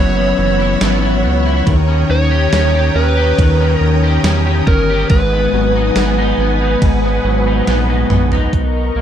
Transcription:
0.00 0.33 F#1 loud
0.00 1.76 F#2 medium
0.00 0.38 E3 medium
0.00 0.16 B3 medium
0.00 0.58 E4 medium
0.00 0.80 C#5 medium
0.00 5.06 C#5 medium
0.00 1.64 F#5 medium
0.00 1.64 B5 medium
0.00 1.64 E6 medium
0.17 0.80 B3 medium
0.38 0.76 F#1 loud
0.38 1.76 E3 medium
0.60 1.01 E4 medium
0.81 1.26 G#1 medium
0.81 1.22 B3 medium
0.81 snare loud
0.81 ride medium
0.81 tambourine medium
1.02 1.44 E4 medium
1.24 1.62 C#2 loud
1.24 1.76 B3 medium
1.46 1.76 E4 medium
1.67 2.05 D#2 loud
1.67 3.38 D#3 medium
1.67 5.07 G5 medium
1.67 5.07 A#5 medium
1.67 8.49 D#6 medium
1.67 kick loud
1.67 ride medium
1.88 2.51 C#4 medium
2.10 2.48 D#2 loud
2.10 2.99 C#5 loud
2.31 2.73 G4 medium
2.52 2.91 D#2 loud
2.52 2.94 C#4 medium
2.52 snare loud
2.52 ride medium
2.52 tambourine medium
2.74 3.16 G4 medium
2.95 3.33 D#2 loud
2.95 3.59 C#4 medium
2.95 3.78 B4 loud
3.17 4.02 G4 medium
3.38 3.76 D#2 loud
3.38 6.88 D#3 medium
3.38 kick loud
3.38 ride medium
3.60 4.24 C#4 medium
3.78 4.19 D#2 loud
3.78 4.21 A#4 loud
4.03 4.45 G4 medium
4.24 4.62 E2 medium
4.24 4.68 C#4 medium
4.24 snare loud
4.24 ride medium
4.24 tambourine medium
4.47 4.88 G4 medium
4.67 5.05 G1 medium
4.67 5.20 C#4 medium
4.67 5.10 A#4 loud
4.67 kick loud
4.90 5.19 G4 medium
5.10 5.48 G#1 loud
5.10 6.81 G#2 medium
5.10 8.06 B4 loud
5.10 8.50 B4 medium
5.10 8.50 F#5 medium
5.10 8.50 G#5 medium
5.10 kick loud
5.10 ride medium
5.33 5.97 B3 medium
5.53 5.91 G#1 medium
5.53 7.25 F#3 medium
5.76 6.18 D#4 medium
5.96 6.34 G#1 loud
5.96 6.39 B3 medium
5.96 snare loud
5.96 ride medium
5.96 tambourine medium
6.18 6.61 D#4 medium
6.38 6.76 G#1 loud
6.38 7.04 B3 medium
6.61 7.46 D#4 medium
6.82 7.20 G#1 loud
6.82 8.62 G#2 medium
6.82 kick loud
6.82 ride medium
7.04 7.68 B3 medium
7.24 7.62 G#1 loud
7.24 9.02 F#3 medium
7.47 7.89 D#4 medium
7.67 8.05 A#1 loud
7.67 8.11 B3 medium
7.67 snare medium
7.67 ride medium
7.90 8.32 D#4 medium
8.10 8.48 A#1 loud
8.10 8.96 B3 medium
8.10 mid tom loud
8.32 9.02 D#4 medium
8.32 floor tom medium
8.53 8.91 B1 medium
8.53 9.02 A#4 medium
8.53 9.02 D#5 medium
8.53 9.02 A#5 medium
8.53 9.02 C#6 medium
8.53 kick medium
8.53 closed hi-hat medium
8.95 9.02 B1 loud
8.95 9.02 A#3 medium

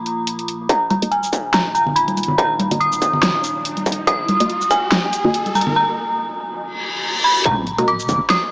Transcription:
0.00 0.66 A#3 medium
0.00 0.65 F4 medium
0.00 0.44 A#5 medium
0.06 closed hi-hat soft
0.27 closed hi-hat medium
0.39 closed hi-hat soft
0.48 closed hi-hat medium
0.69 5.72 A#3 medium
0.69 5.72 D#4 medium
0.69 5.72 F5 medium
0.69 0.89 A#5 medium
0.69 kick loud
0.69 closed hi-hat medium
0.69 riser medium
0.90 1.12 A#5 medium
0.90 closed hi-hat medium
0.90 high conga loud
1.02 1.14 A#3 loud
1.02 1.14 F#4 medium
1.02 1.14 D#5 loud
1.02 closed hi-hat medium
1.11 1.55 G#5 medium
1.11 closed hi-hat soft
1.23 shaker medium
1.33 kick medium
1.33 closed hi-hat medium
1.33 shaker medium
1.54 1.73 A#5 medium
1.54 snare loud
1.54 closed hi-hat medium
1.75 1.97 A#5 medium
1.75 closed hi-hat medium
1.75 shaker medium
1.87 low conga medium
1.96 2.39 B5 medium
1.96 closed hi-hat medium
2.08 closed hi-hat soft
2.08 high conga medium
2.17 closed hi-hat soft
2.17 high conga medium
2.17 shaker soft
2.23 closed hi-hat medium
2.28 low conga medium
2.38 2.78 A#5 loud
2.38 kick loud
2.38 closed hi-hat medium
2.59 closed hi-hat medium
2.59 high conga medium
2.71 2.78 A#3 medium
2.71 2.78 F#4 medium
2.71 2.78 D#5 loud
2.71 closed hi-hat medium
2.71 low conga medium
2.80 3.61 D#6 loud
2.80 closed hi-hat soft
2.92 shaker medium
3.02 kick medium
3.02 closed hi-hat medium
3.02 shaker medium
3.13 low conga medium
3.23 snare loud
3.23 closed hi-hat medium
3.44 closed hi-hat medium
3.44 shaker medium
3.65 closed hi-hat medium
3.77 closed hi-hat soft
3.77 high conga medium
3.86 kick medium
3.86 closed hi-hat medium
3.86 high conga medium
3.86 shaker soft
3.92 closed hi-hat medium
4.07 4.73 D#6 loud
4.07 kick loud
4.07 closed hi-hat medium
4.28 closed hi-hat medium
4.28 high conga loud
4.40 4.52 A#3 medium
4.40 4.52 F#4 medium
4.40 4.52 D#5 loud
4.40 closed hi-hat medium
4.50 closed hi-hat soft
4.61 shaker medium
4.71 5.58 G#5 medium
4.71 kick medium
4.71 closed hi-hat medium
4.71 shaker medium
4.92 snare loud
4.92 closed hi-hat medium
5.13 closed hi-hat medium
5.13 shaker medium
5.24 5.36 A#3 loud
5.24 5.36 F#4 medium
5.24 5.36 D#5 loud
5.24 low conga medium
5.34 closed hi-hat medium
5.46 closed hi-hat soft
5.46 high conga medium
5.55 5.75 A#5 medium
5.55 closed hi-hat soft
5.55 high conga medium
5.55 shaker medium
5.61 closed hi-hat medium
5.67 low conga loud
5.76 6.16 A#5 medium
6.61 reverse cymbal medium
7.24 7.44 B5 medium
7.45 8.08 D#1 loud
7.45 7.89 A#5 loud
7.45 kick loud
7.45 closed hi-hat medium
7.67 closed hi-hat medium
7.78 7.90 A#3 loud
7.78 7.90 F#4 medium
7.78 7.90 D#5 loud
7.78 closed hi-hat medium
7.88 8.31 D6 loud
7.88 closed hi-hat soft
8.00 shaker medium
8.09 8.20 D#1 medium
8.09 kick medium
8.09 closed hi-hat medium
8.09 shaker medium
8.30 8.52 D#6 loud
8.30 snare loud
8.30 closed hi-hat medium

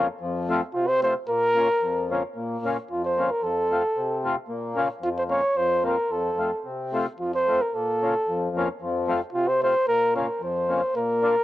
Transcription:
0.21 0.61 F2 medium
0.49 0.61 A3 medium
0.49 0.61 C4 medium
0.49 0.61 F4 medium
0.74 1.15 C3 medium
0.74 0.89 F4 medium
0.88 1.02 C5 loud
1.02 1.14 A3 soft
1.02 1.14 C4 soft
1.02 1.14 F4 medium
1.02 1.14 C5 medium
1.27 1.68 A#2 medium
1.27 2.08 A#4 loud
1.55 1.67 A#3 medium
1.55 1.68 C#4 medium
1.55 1.68 F4 medium
1.82 2.23 F2 medium
2.10 2.22 A#3 medium
2.10 2.23 C#4 medium
2.10 2.23 F4 medium
2.36 2.77 A#2 medium
2.65 2.77 A#3 medium
2.65 2.77 C#4 medium
2.65 2.77 F4 medium
2.90 3.30 F2 medium
2.90 3.04 F4 medium
3.05 3.32 C5 medium
3.17 3.29 A#3 medium
3.17 3.30 C#4 soft
3.17 3.30 F4 medium
3.31 3.45 A#4 medium
3.42 3.83 F2 medium
3.42 4.24 A4 medium
3.70 3.82 A3 medium
3.70 3.83 C4 medium
3.70 3.83 F4 medium
3.96 4.36 C3 medium
4.24 4.35 A3 medium
4.24 4.36 C4 medium
4.24 4.36 F4 medium
4.48 4.89 A#2 medium
4.75 4.87 A#3 medium
4.75 4.88 C#4 medium
4.75 4.88 F4 medium
5.01 5.42 F2 medium
5.01 5.09 F4 medium
5.18 5.24 C5 medium
5.29 5.41 A#3 medium
5.29 5.42 C#4 soft
5.29 5.42 F4 medium
5.29 5.59 C#5 medium
5.55 5.97 F2 medium
5.55 5.86 C5 medium
5.83 5.96 A#3 medium
5.83 5.96 C4 soft
5.83 5.96 F4 medium
5.83 6.13 A#4 medium
6.10 6.52 F2 medium
6.10 6.66 A4 medium
6.38 6.51 A3 soft
6.38 6.51 C4 soft
6.38 6.51 F4 soft
6.64 7.06 C3 soft
6.93 7.05 A3 medium
6.93 7.05 C4 medium
6.93 7.06 F4 medium
7.19 7.61 F2 medium
7.19 7.34 F4 medium
7.35 7.63 C5 medium
7.48 7.60 A3 soft
7.48 7.60 C4 soft
7.48 7.60 F4 medium
7.62 7.76 A#4 medium
7.74 8.15 A#2 medium
7.74 8.57 A4 medium
8.02 8.14 A#3 medium
8.02 8.14 C#4 medium
8.02 8.14 F4 medium
8.28 8.68 F2 medium
8.56 8.68 A#3 medium
8.56 8.68 C#4 medium
8.56 8.68 F4 medium
8.82 9.21 F2 medium
9.08 9.20 A3 medium
9.08 9.20 C4 medium
9.08 9.20 F4 medium
9.33 9.74 C3 medium
9.33 9.50 F4 medium
9.48 9.62 C5 medium
9.62 9.73 A3 medium
9.62 9.74 C4 soft
9.62 9.74 F4 medium
9.62 9.86 C5 loud
9.87 10.28 A#2 medium
9.87 10.14 A#4 loud
10.15 10.27 A#3 medium
10.15 10.27 C#4 medium
10.15 10.27 F4 medium
10.15 10.40 A#4 medium
10.41 10.82 F2 medium
10.41 10.93 C5 medium
10.68 10.81 A#3 medium
10.68 10.81 C#4 soft
10.68 10.81 F4 medium
10.95 11.36 A#2 medium
10.95 11.44 A#4 loud
11.22 11.34 A#3 medium
11.22 11.35 D4 medium
11.22 11.35 F4 medium

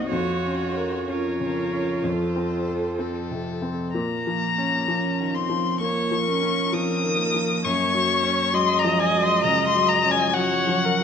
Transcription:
0.00 0.13 C2 soft
0.00 0.14 C3 soft
0.00 0.14 D#4 soft
0.00 0.11 F#4 medium
0.00 0.14 C5 soft
0.09 2.01 F2 soft
0.09 0.98 F4 soft
0.09 1.11 F#4 medium
0.09 1.07 C#5 soft
0.46 0.97 C#4 soft
0.77 1.28 A#4 soft
1.08 1.60 C#4 soft
1.08 3.46 F4 soft
1.08 2.06 A#4 soft
1.08 2.07 C#5 soft
1.40 1.92 C#3 soft
1.73 2.04 C#4 soft
2.04 3.89 F2 soft
2.04 3.73 A4 soft
2.04 3.01 C5 medium
2.36 2.86 C4 soft
2.68 3.18 A4 soft
2.99 3.49 C4 soft
2.99 3.93 A4 soft
3.31 3.81 C3 soft
3.62 3.94 C4 soft
3.93 5.78 A#2 soft
3.93 4.89 A#3 soft
3.93 5.36 A#5 medium
4.27 4.77 F3 soft
4.58 5.08 C#4 soft
4.88 5.38 F3 soft
4.88 5.37 C#4 soft
5.20 5.51 D#3 soft
5.35 5.82 C4 soft
5.35 5.80 C6 medium
5.49 6.00 F3 soft
5.80 6.29 A#3 medium
5.80 6.30 A#3 soft
5.80 6.25 C#5 medium
5.80 6.75 C#6 medium
6.11 6.61 F3 soft
6.27 6.76 C#4 medium
6.27 7.62 A#4 medium
6.43 6.92 C#4 soft
6.73 7.22 F3 soft
6.73 7.20 C4 soft
6.73 7.66 D#6 medium
7.04 7.35 D#3 soft
7.21 8.57 A#3 medium
7.34 7.65 F3 soft
7.65 9.41 F#2 medium
7.65 8.56 C#5 medium
7.65 8.55 C#6 medium
7.94 8.42 F#3 soft
8.23 8.72 C#4 medium
8.53 9.02 F#3 soft
8.53 10.38 G#3 medium
8.53 10.35 D#5 medium
8.53 8.80 C6 medium
8.78 9.01 A#5 medium
8.84 9.15 F3 soft
9.00 9.24 G#5 medium
9.14 9.63 F#3 soft
9.23 9.43 C6 medium
9.44 9.93 C#3 medium
9.44 9.67 A#5 medium
9.68 9.90 C6 medium
9.75 10.24 F#3 medium
9.89 10.13 A#5 loud
10.05 10.55 C#4 soft
10.11 10.35 G#5 medium
10.33 10.88 F#3 medium
10.33 11.04 F#3 medium
10.33 10.87 C#5 medium
10.33 11.04 F#5 medium
10.67 11.01 F3 soft
10.85 11.04 A#4 medium
11.01 11.04 F#3 medium

